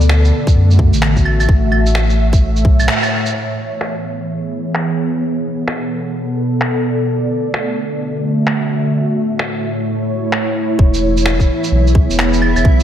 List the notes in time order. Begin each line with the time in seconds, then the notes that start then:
Already playing: D2 D3 A3 B3 A4 D5
0.01 shaker
0.09 finger snap
0.25 shaker
0.37 F#4
0.47 E5, kick, shaker
0.55 F#2
0.71 shaker
0.79 kick
0.93 A1, shaker
1.02 finger snap
1.17 kick, shaker
1.25 claves
1.40 claves, shaker
1.48 A1 A2, kick
1.72 claves
1.86 shaker
1.95 finger snap
2.10 C#5, shaker
2.33 kick, shaker
2.56 shaker
2.65 B1, kick
2.80 claves, shaker
2.88 finger snap
3.03 claves, shaker
3.26 shaker
3.34 E3
3.47 B3
3.81 finger snap
4.75 finger snap
5.21 B2
5.36 A4
5.68 finger snap
6.07 D5
6.61 finger snap
7.06 D3
7.14 A3
7.54 finger snap
7.92 F#4 E5
8.47 finger snap
8.93 A2
9.16 C#5
9.34 E4
9.39 finger snap
10.32 finger snap
10.79 E1 E3 E4 E5, kick
10.94 shaker
11.01 B3
11.17 shaker
11.26 finger snap
11.40 kick, shaker
11.64 shaker
11.72 B1
11.87 shaker
11.95 kick
12.10 E1, shaker
12.19 finger snap
12.33 shaker
12.42 claves
12.56 E1, claves, shaker
12.64 B1, kick
12.80 shaker